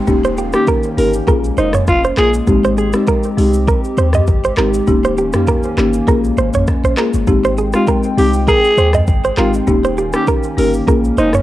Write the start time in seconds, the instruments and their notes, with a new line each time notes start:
Already playing: analog synth pad G5, downlifter
0.07 808-style bass D#1, analog synth pad D#3 A#3 C#4, marimba A#3 C#4 D#4 G4, kick, shaker
0.24 clean electric guitar C5, shaker
0.38 clean electric guitar G4, shaker
0.53 marimba A#3 C#4 D#4 G4, alto saxophone G4, cross-stick, shaker
0.67 clean electric guitar A#4, kick, shaker
0.83 shaker
0.97 808-style bass G1, marimba A#3 C#4 D#4 G4, alto saxophone A#4, open hi-hat, shaker
1.13 shaker
1.27 808-style bass A#1, analog synth pad G#3, marimba A#3 C#4 F4 G#4, clean electric guitar A#4, kick, shaker
1.44 shaker
1.57 808-style bass F1, alto saxophone D#4, clean electric guitar C5, shaker
1.73 clean electric guitar C#5, cross-stick, mid tom, shaker
1.87 808-style bass F1, alto saxophone F4, kick, cross-stick, shaker
2.04 clean electric guitar C5, shaker
2.17 808-style bass A#1, marimba A#3 C#4 F4 G#4, alto saxophone G#4, clean electric guitar A#4, cross-stick, clap, shaker
2.34 shaker
2.47 808-style bass G#1, marimba G#3 C4 D#4 G4, analog synth pad C4 G4, kick, shaker
2.64 clean electric guitar C5, shaker
2.78 clean electric guitar G#4, shaker
2.93 marimba G#3 C4 D#4 G4, cross-stick, shaker
3.07 clean electric guitar A#4, kick, shaker
3.23 shaker
3.37 808-style bass C2, marimba G#3 C4 D#4 G4, open hi-hat, shaker
3.54 shaker
3.68 clean electric guitar A#4, kick, shaker
3.84 shaker
3.97 808-style bass D#2, clean electric guitar C5, shaker
4.13 clean electric guitar D#5, cross-stick, mid tom, shaker
4.27 808-style bass G#1, kick, shaker
4.44 clean electric guitar C5, shaker
4.57 808-style bass G#1, marimba G#3 C4 D#4 G4, clean electric guitar A#4, cross-stick, clap, shaker
4.74 shaker
4.87 808-style bass D#1, analog synth pad D#3 A#3 C#4, marimba A#3 C#4 D#4 G4, kick, shaker
5.04 clean electric guitar C5, shaker
5.18 clean electric guitar G4, shaker
5.33 marimba A#3 C#4 D#4 G4, cross-stick, mid tom, shaker
5.47 clean electric guitar A#4, kick, shaker
5.63 shaker
5.77 808-style bass G1, marimba A#3 C#4 D#4 G4, cross-stick, clap, shaker
5.94 shaker
6.07 808-style bass A#1, analog synth pad G#3 C#4, marimba A#3 C#4 F4 G#4, clean electric guitar A#4, kick, shaker
6.24 shaker
6.37 808-style bass G#1, clean electric guitar C5, shaker
6.54 808-style bass G#1, clean electric guitar C#5, mid tom, shaker
6.67 kick, cross-stick, shaker
6.84 808-style bass A#1, clean electric guitar C5, shaker
6.97 marimba A#3 C#4 F4 G#4, clean electric guitar A#4, cross-stick, clap, shaker
7.14 808-style bass G1, shaker
7.27 808-style bass G#1, marimba G#3 C4 D#4 G4, analog synth pad C4 G5, kick, shaker
7.44 clean electric guitar C5, shaker
7.58 clean electric guitar G#4, shaker
7.73 marimba G#3 C4 D#4 G4, alto saxophone F4, cross-stick, shaker
7.87 clean electric guitar A#4, kick, shaker
8.03 shaker
8.17 808-style bass C2, marimba G#3 C4 D#4 G4, alto saxophone G4, open hi-hat, shaker
8.34 shaker
8.48 alto saxophone G#4, clean electric guitar A#4, kick, shaker
8.64 shaker
8.78 808-style bass D#2, clean electric guitar C5, shaker
8.93 clean electric guitar D#5, cross-stick, mid tom, shaker
9.07 808-style bass G#1, kick, shaker
9.24 clean electric guitar C5, shaker
9.37 808-style bass G#1, marimba G#3 C4 D#4 G4, alto saxophone F4, clean electric guitar A#4, cross-stick, clap, shaker
9.54 shaker
9.67 808-style bass D#1, analog synth pad D#3 A#3 C#4, marimba A#3 C#4 D#4 G4, kick, shaker
9.84 clean electric guitar C5, shaker
9.98 clean electric guitar G4, shaker
10.13 marimba A#3 C#4 D#4 G4, alto saxophone G4, cross-stick, shaker
10.27 clean electric guitar A#4, kick, shaker
10.43 shaker
10.57 808-style bass G1, marimba A#3 C#4 D#4 G4, alto saxophone A#4, open hi-hat, shaker
10.73 shaker
10.87 808-style bass A#1, analog synth pad G#3 C#4, marimba A#3 C#4 F4 G#4, clean electric guitar A#4, kick, shaker
11.04 shaker
11.17 808-style bass F1, alto saxophone D#4, clean electric guitar C5, shaker
11.33 clean electric guitar C#5, cross-stick, mid tom, shaker